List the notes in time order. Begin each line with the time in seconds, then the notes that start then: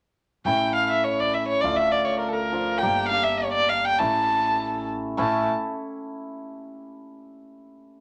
0.45 A1 A3 C#4 E4 G5
0.75 F5
0.87 E5 F5
1.04 C#5
1.20 D5
1.34 E5
1.48 C#5
1.61 D2 A3 D4 F4 D5
1.76 E5
1.91 D5
2.04 C#5 D5
2.19 A#4
2.29 A4
2.33 A#4
2.52 F3 D4 F4
2.78 A#3 D4 G4 G5
2.83 G1
3.09 A#3 D4 G4 F5
3.23 E5
3.38 C#5
3.53 D5
3.69 F5
3.85 G5
3.99 A1 A3 C#4 E4 A5
5.17 A1 A3 C#4 E4 A5